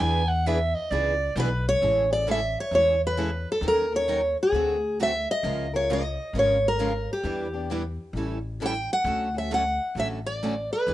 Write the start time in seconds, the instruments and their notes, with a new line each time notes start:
0.00 upright bass E2, steel-string acoustic guitar E3 B3 D4 G#4 B4, soprano saxophone G#5
0.28 soprano saxophone F#5
0.46 steel-string acoustic guitar E3 B3 D4 G#4 B4, soprano saxophone E5
0.74 soprano saxophone D#5
0.91 upright bass C#2, steel-string acoustic guitar E3 B3 D4 G#4 B4, soprano saxophone D5
1.36 upright bass B1, steel-string acoustic guitar E3 B3 D4 G#4 B4
1.40 steel-string acoustic guitar B4
1.69 steel-string acoustic guitar C#5
1.82 upright bass A1, steel-string acoustic guitar C#3 E3 G#3 A3 C#4 E4 G#4 A4
2.11 steel-string acoustic guitar A3 C#4 G#4 D5
2.27 steel-string acoustic guitar C#3 E3 G#3 A3 C#4 E4 G#4 A4
2.31 steel-string acoustic guitar E5
2.60 steel-string acoustic guitar C#5
2.71 upright bass E2, steel-string acoustic guitar C#3 E3 G#3 A3 C#4 E4 G#4 A4 C#5
3.07 steel-string acoustic guitar B4
3.17 steel-string acoustic guitar C#3 E3 G#3 A3 C#4 E4 G#4 A4
3.52 steel-string acoustic guitar A4
3.61 upright bass D#2, steel-string acoustic guitar D#3 F#3 C#4 D#4 A#4
3.68 steel-string acoustic guitar A#4
3.92 steel-string acoustic guitar C#4 D#4 A#4 C#5
4.08 steel-string acoustic guitar D#3 F#3 C#4 D#4 A#4
4.43 steel-string acoustic guitar G#4
4.52 upright bass D2, steel-string acoustic guitar D3 A3 C4 F#4 A4
5.01 steel-string acoustic guitar D3 A3 C4 F#4 A4 E5
5.31 steel-string acoustic guitar D#5
5.43 upright bass C#2, steel-string acoustic guitar C#3 F3 G#3 C#4 F4 A#4
5.73 steel-string acoustic guitar G#3 C#4 F4 A#4 C#5
5.90 steel-string acoustic guitar C#3 F3 G#3 C#4 F4 A#4 D#5
6.33 upright bass G#1, steel-string acoustic guitar C#3 F3 G#3
6.37 steel-string acoustic guitar C#4 F4 A#4 C#5
6.68 steel-string acoustic guitar A#4
6.80 steel-string acoustic guitar C#3 F3 G#3 C#4 F4 A#4
7.13 steel-string acoustic guitar G4
7.23 upright bass E2, steel-string acoustic guitar E3 G3 B3 D4 E4 G4 B4
7.54 steel-string acoustic guitar B3 D4 G4
7.70 steel-string acoustic guitar E3 G3 B3 D4 E4 G4 B4
8.13 upright bass A1, steel-string acoustic guitar E3 G3 C#4 E4 A4
8.60 steel-string acoustic guitar E3 G3 C#4 E4 A4
8.66 steel-string acoustic guitar G5
8.93 steel-string acoustic guitar F#5
9.04 upright bass D2, steel-string acoustic guitar D3 F#3 A3 C#4 F#4 A4
9.34 steel-string acoustic guitar A3 C#4 F#4 E5
9.51 steel-string acoustic guitar D3 F#3 A3 C#4 F#4 A4 F#5
9.95 upright bass A1, steel-string acoustic guitar D3 F#3 A3 C#4 F#4 A4
10.00 steel-string acoustic guitar E5
10.26 steel-string acoustic guitar D5
10.43 steel-string acoustic guitar D3 F#3 A3 C#4 F#4 A4
10.73 steel-string acoustic guitar B4
10.87 upright bass E2, steel-string acoustic guitar E3 B3 D4 G#4 B4